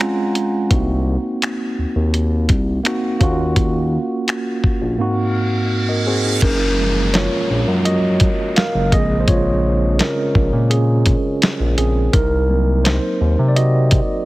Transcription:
Already playing: G#3 F#5 G#5
0.00 C4 C#4 F4 A#5, finger snap
0.35 closed hi-hat
0.70 C2 A#3 C4 D#4 F#4, kick, closed hi-hat
1.42 finger snap, closed hi-hat
1.78 D#2
1.96 D#2
2.14 closed hi-hat
2.49 C2, kick, closed hi-hat
2.84 A#3 C4 D#4 F#4, finger snap, closed hi-hat
3.20 D#2 A#3 C#4 F4 F#4, kick, closed hi-hat
3.56 kick, closed hi-hat
4.28 finger snap, closed hi-hat
4.64 A#1, kick
4.81 A#1
4.98 G#2 A#3 C4 D#4 F#4, reverse cymbal
5.89 A#4 D#5
6.06 C4 F#4 G#4 C5
6.25 D#4 G#4
6.42 F#1 C#4 A#4, kick, closed hi-hat, crash, downlifter
6.78 F3 G#3 A#3
7.14 F4 C#5, snare, closed hi-hat
7.50 A#1
7.68 F#2
7.85 F#4 D#5, closed hi-hat
8.20 kick, closed hi-hat
8.56 A#4 F5, snare, closed hi-hat
8.74 F#1
8.92 A#1 C#3 G#3 C4 G#4 D#5, kick, closed hi-hat
9.20 C5
9.28 F4 C#5, kick, closed hi-hat
9.99 C#4 A#4, snare, closed hi-hat
10.35 A#1, kick
10.53 A#2
10.70 C#4 G#4, closed hi-hat
11.06 kick, closed hi-hat
11.42 snare, closed hi-hat
11.60 A#1
11.78 A#1 C4 G#4, closed hi-hat
12.13 C2 D#4 A#4, kick, closed hi-hat
12.49 F#3 A#3 C4
12.84 D#4 C5, snare, closed hi-hat
13.21 D#2
13.39 C3
13.48 D5
13.56 F#4 D#5, closed hi-hat
13.91 kick, closed hi-hat

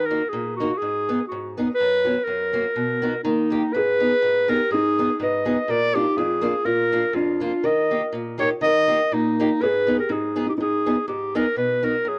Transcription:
Already playing: D#3
0.06 A#4
0.10 A#3 D#4 F#4
0.29 A#2 G#4
0.56 D#4 F#4
0.61 A#3 F#4
0.78 G#4
0.82 G#2
1.09 B3 D#4 G#4
1.28 G#2 F#4
1.57 B3 D#4 G#4
1.75 B4
1.80 F#2
2.05 B3 C#4 F#4
2.24 F#2 A#4
2.53 A#3 C#4 F#4
2.76 B2
3.02 B3 D#4 F#4
3.24 D#3 A#3 D#4
3.50 A#3 D#4 G4
3.73 G#2 G#4 B4
4.00 B3 D#4 G#4
4.22 G#2
4.48 B3 D#4 G#4 A#4
4.53 G4
4.71 G#2 D#4 G#4
4.99 B3 D#4 G#4
5.20 G#2 B4 D#5
5.45 B3 D#4 G#4
5.68 A#2 A#4 D5
5.94 A#3 D4 D#4 F4 G4
6.17 F2 F4 G#4
6.41 A#3 D4 F4
6.65 A#2 F4 A#4
6.92 A#3 D4 F4
7.13 F2 D4 F4
7.40 A#3 D4 F4
7.63 D#3 A#4 D#5
7.91 A#3 D#4 G4
8.13 A#2
8.38 A#3 D#4 G4 C#5
8.42 A#4
8.61 D#3 D#5
8.66 A#4
8.88 A#3 D#4 G4
9.12 A#2 A#3 D#4
9.40 A#3 D#4 G4
9.61 G#2 G#4 B4
9.87 B3 D#4 G#4
9.99 G4 A#4
10.09 G#2 D#4 G#4
10.36 B3 D#4 G#4
10.47 D#4 G4
10.58 G#2 D#4
10.62 G#4
10.86 B3 D#4 G#4
11.08 G#2 G4
11.35 B3 D#4 G#4 A#4
11.56 B2 B4
11.83 B3 D#4 F#4 A#4
12.05 F#2 G#4

